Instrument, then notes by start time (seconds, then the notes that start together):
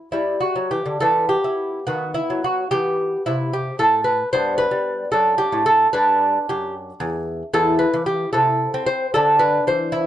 lute
Already playing: E4
0.12 G3 E4
0.41 F#4
0.56 F#3
0.71 E3 G4
0.86 D3
1.00 E3 B3 A4
1.29 G4
1.44 E4
1.87 D#3 B3 F#4
2.14 E4
2.30 F#3
2.44 F#4
2.71 E3 B3 G4
3.26 C3 E4
3.53 G4
3.79 A2 A4
4.04 B4
4.33 G2 B3 C5
4.58 B4
4.71 G3
5.12 F#2 D4 A4
5.38 G4
5.52 A2
5.66 A4
5.93 G2 D4 B4
6.49 F#2 G4
7.00 E2
7.54 E2 E4 A4
7.79 B4
7.94 E3
8.06 G4
8.33 C3 E4 A4
8.74 C4
8.86 C5
9.14 D3 D4 A4
9.39 B4
9.67 E3 C5
9.92 E4